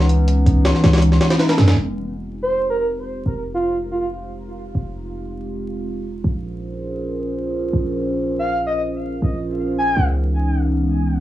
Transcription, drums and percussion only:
0.00 snare soft
0.09 closed hi-hat medium
0.28 closed hi-hat medium
0.46 kick medium
0.46 closed hi-hat medium
0.65 snare loud
0.65 closed hi-hat medium
0.75 snare soft
0.84 snare loud
0.84 closed hi-hat medium
0.93 snare medium
0.93 closed hi-hat medium
0.98 snare medium
0.98 closed hi-hat medium
1.02 closed hi-hat medium
1.12 snare soft
1.21 snare loud
1.21 closed hi-hat medium
1.30 snare loud
1.30 closed hi-hat medium
1.40 snare loud
1.40 closed hi-hat medium
1.49 snare loud
1.49 closed hi-hat medium
1.58 snare loud
1.58 closed hi-hat medium
1.68 snare loud
1.68 closed hi-hat medium

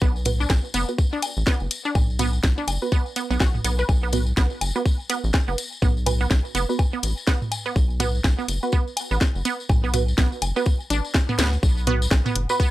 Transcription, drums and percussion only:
0.01 kick loud
0.01 tambourine soft
0.16 tambourine soft
0.25 closed hi-hat loud
0.25 mid tom medium
0.25 tambourine loud
0.41 tambourine soft
0.50 kick loud
0.50 snare medium
0.50 tambourine medium
0.50 low woodblock medium
0.65 tambourine soft
0.74 closed hi-hat loud
0.74 tambourine loud
0.89 tambourine soft
0.98 kick loud
0.98 tambourine medium
1.13 tambourine soft
1.22 closed hi-hat loud
1.22 tambourine loud
1.22 low woodblock medium
1.37 tambourine soft
1.47 kick loud
1.47 snare medium
1.47 tambourine medium
1.60 tambourine soft
1.71 closed hi-hat loud
1.71 tambourine medium
1.85 tambourine soft
1.95 kick loud
1.95 mid tom medium
1.95 tambourine medium
1.95 low woodblock medium
2.10 tambourine soft
2.19 closed hi-hat loud
2.19 mid tom medium
2.19 tambourine medium
2.33 tambourine soft
2.43 kick loud
2.43 snare medium
2.43 tambourine medium
2.58 tambourine soft
2.67 closed hi-hat medium
2.67 tambourine loud
2.67 low woodblock medium
2.82 tambourine soft
2.92 kick loud
2.92 tambourine medium
3.06 tambourine soft
3.16 closed hi-hat medium
3.16 tambourine loud
3.31 tambourine soft
3.40 kick loud
3.40 snare medium
3.40 tambourine medium
3.40 low woodblock medium
3.55 mid tom medium
3.55 tambourine soft
3.64 closed hi-hat loud
3.64 tambourine loud
3.79 tambourine soft
3.89 kick loud
3.89 tambourine medium
3.89 low woodblock medium
4.03 tambourine soft
4.12 closed hi-hat medium
4.12 mid tom medium
4.12 tambourine medium
4.27 tambourine soft
4.37 kick loud
4.37 snare medium
4.37 tambourine medium
4.50 tambourine soft
4.61 closed hi-hat medium
4.61 tambourine loud
4.61 low woodblock medium
4.76 tambourine soft
4.86 kick loud
4.86 tambourine medium
5.00 tambourine soft
5.09 closed hi-hat medium
5.09 tambourine medium
5.24 tambourine soft
5.33 kick loud
5.33 snare medium
5.33 tambourine soft
5.33 low woodblock medium
5.48 tambourine soft
5.58 closed hi-hat medium
5.58 tambourine loud
5.72 tambourine soft
5.82 kick loud
5.82 mid tom medium
5.82 tambourine medium
5.97 tambourine soft
6.06 closed hi-hat medium
6.06 mid tom medium
6.06 tambourine medium
6.06 low woodblock medium
6.21 tambourine soft
6.31 kick loud
6.31 snare medium
6.31 tambourine soft
6.45 tambourine soft
6.55 closed hi-hat medium
6.55 tambourine medium
6.70 tambourine soft
6.79 kick loud
6.79 tambourine soft
6.79 low woodblock medium
6.93 tambourine soft
7.03 closed hi-hat medium
7.03 tambourine medium
7.17 tambourine soft
7.27 kick loud
7.27 snare medium
7.27 tambourine medium
7.42 mid tom medium
7.42 tambourine soft
7.52 closed hi-hat medium
7.52 tambourine medium
7.52 low woodblock medium
7.66 tambourine soft
7.76 kick loud
7.76 tambourine medium
7.90 tambourine soft
8.00 closed hi-hat medium
8.00 mid tom medium
8.00 tambourine medium
8.15 tambourine soft
8.24 kick loud
8.24 snare medium
8.24 tambourine soft
8.24 low woodblock medium
8.39 tambourine soft
8.48 closed hi-hat medium
8.48 tambourine medium
8.63 tambourine soft
8.72 kick loud
8.72 tambourine medium
8.87 tambourine soft
8.97 closed hi-hat medium
8.97 tambourine medium
8.97 low woodblock medium
9.11 tambourine soft
9.21 kick loud
9.21 snare medium
9.21 tambourine soft
9.35 tambourine soft
9.45 closed hi-hat medium
9.45 tambourine medium
9.60 tambourine soft
9.69 kick loud
9.69 mid tom medium
9.69 tambourine soft
9.69 low woodblock medium
9.84 tambourine soft
9.94 closed hi-hat medium
9.94 mid tom medium
9.94 tambourine medium
10.08 tambourine soft
10.18 kick loud
10.18 snare medium
10.18 tambourine medium
10.32 tambourine soft
10.42 closed hi-hat medium
10.42 tambourine medium
10.42 low woodblock medium
10.56 tambourine soft
10.66 kick loud
10.66 tambourine medium
10.80 tambourine soft
10.90 closed hi-hat medium
10.90 tambourine medium
11.04 tambourine soft
11.15 kick loud
11.15 snare medium
11.15 tambourine medium
11.15 low woodblock medium
11.29 mid tom medium
11.29 tambourine soft
11.39 snare medium
11.39 closed hi-hat medium
11.39 tambourine medium
11.53 tambourine soft
11.63 kick loud
11.63 tambourine medium
11.77 tambourine soft
11.87 closed hi-hat loud
11.87 mid tom medium
12.02 tambourine medium
12.11 kick loud
12.11 snare loud
12.11 low woodblock medium
12.26 mid tom medium
12.26 tambourine soft
12.36 closed hi-hat medium
12.49 tambourine medium
12.60 kick loud
12.60 tambourine medium

